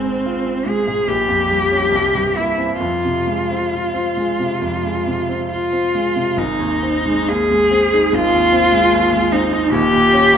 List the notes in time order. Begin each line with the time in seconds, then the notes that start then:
Already playing: G#1 G#2 G#3 C4
0.06 C4
0.25 F4
0.47 C4
0.66 G#3 G#4
0.87 G#2
1.08 A#1 G4
1.28 F2
1.50 G3
1.72 C#4
1.92 C2
2.15 G2
2.36 A#3 E4
2.58 C4
2.80 F2 F4
3.05 C3
3.27 G#3
3.51 C4
3.73 F4
3.94 C4
4.17 G#3
4.39 C3
4.62 F2
4.83 G#3
5.07 C3
5.29 C4
5.49 F4
5.73 C4
5.95 G#3
6.16 C3
6.37 G#1 D#4
6.59 D#2
6.83 C4
7.06 G#3
7.28 D#2 G#4
7.51 G#3
7.71 C4
7.94 D#4
8.13 G#1 F4
8.33 D#2
8.53 C4
8.72 G#3
8.92 D#2
9.13 G#3
9.32 C4 D#4
9.53 D#4
9.71 D#1 D#2 G4
9.93 A#2
10.13 C#4
10.34 A#3